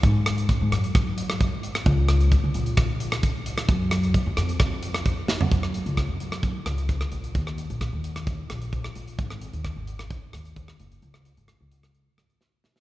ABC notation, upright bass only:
X:1
M:4/4
L:1/16
Q:1/4=131
K:F#
V:1 name="Upright bass" clef=bass
G,,4- G,, G,, F,,8 z2 | C,,4- C,, C,, A,,,8 z2 | F,,4- F,, F,, E,,8 z2 | F,,3 C,,2 F,,4- F,, C,,4 A,,,2 |
D,,3 A,,,2 D,,4- D,, A,,,4 A,,,2 | G,,,3 D,,2 G,,,4- G,,, D,,4 F,,,2 | C,,3 G,,,2 C,,4- C,, G,,,4 B,,,2 |]